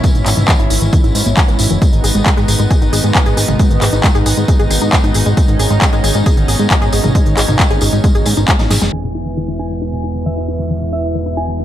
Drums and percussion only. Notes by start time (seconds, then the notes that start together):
0.04 kick, closed hi-hat, tambourine
0.15 closed hi-hat, tambourine
0.26 clap, open hi-hat, tambourine
0.37 closed hi-hat, mid tom, tambourine
0.48 kick, clap, closed hi-hat, tambourine
0.59 closed hi-hat, tambourine
0.70 open hi-hat, tambourine
0.82 closed hi-hat, tambourine
0.93 kick, closed hi-hat, tambourine
1.04 closed hi-hat, tambourine
1.15 open hi-hat, tambourine
1.26 closed hi-hat, tambourine
1.37 kick, clap, closed hi-hat, tambourine
1.48 closed hi-hat, tambourine
1.59 open hi-hat, tambourine
1.70 tambourine
1.82 kick, closed hi-hat, tambourine
1.93 closed hi-hat, tambourine
2.04 open hi-hat, tambourine
2.15 tambourine
2.26 kick, clap, closed hi-hat, tambourine
2.37 closed hi-hat, tambourine
2.48 open hi-hat, tambourine
2.60 closed hi-hat, tambourine
2.71 kick, closed hi-hat, tambourine
2.82 closed hi-hat, tambourine
2.93 open hi-hat, tambourine
3.04 closed hi-hat, tambourine
3.15 kick, clap, closed hi-hat, tambourine
3.26 closed hi-hat, tambourine
3.37 open hi-hat, tambourine
3.48 closed hi-hat, mid tom, tambourine
3.59 kick, closed hi-hat, tambourine
3.71 closed hi-hat, tambourine
3.82 clap, open hi-hat, tambourine
3.93 closed hi-hat, tambourine
4.04 kick, clap, closed hi-hat, tambourine
4.15 closed hi-hat, tambourine
4.26 open hi-hat, tambourine
4.37 closed hi-hat, tambourine
4.48 kick, closed hi-hat, tambourine
4.59 closed hi-hat, tambourine
4.71 open hi-hat, tambourine
4.81 tambourine
4.93 kick, clap, closed hi-hat, tambourine
5.04 closed hi-hat, tambourine
5.14 open hi-hat, tambourine
5.26 tambourine
5.37 kick, closed hi-hat, tambourine
5.48 closed hi-hat, tambourine
5.59 open hi-hat, tambourine
5.71 closed hi-hat, tambourine
5.82 kick, clap, closed hi-hat, tambourine
5.93 closed hi-hat, tambourine
6.04 open hi-hat, tambourine
6.15 closed hi-hat, tambourine
6.26 kick, closed hi-hat, tambourine
6.37 closed hi-hat, tambourine
6.48 open hi-hat, tambourine
6.59 closed hi-hat, tambourine
6.70 kick, clap, closed hi-hat, tambourine
6.82 closed hi-hat, tambourine
6.92 open hi-hat, tambourine
7.04 closed hi-hat, mid tom, tambourine
7.15 kick, closed hi-hat, tambourine
7.26 closed hi-hat, tambourine
7.37 clap, open hi-hat, tambourine
7.48 closed hi-hat, mid tom, tambourine
7.59 kick, clap, closed hi-hat, tambourine
7.70 closed hi-hat, tambourine
7.81 open hi-hat, tambourine
7.93 tambourine
8.04 kick, closed hi-hat, tambourine
8.15 closed hi-hat, tambourine
8.26 open hi-hat, tambourine
8.37 closed hi-hat, tambourine
8.48 kick, clap, closed hi-hat, tambourine
8.59 snare, closed hi-hat, tambourine
8.71 snare, open hi-hat, tambourine
8.82 snare, tambourine
8.93 crash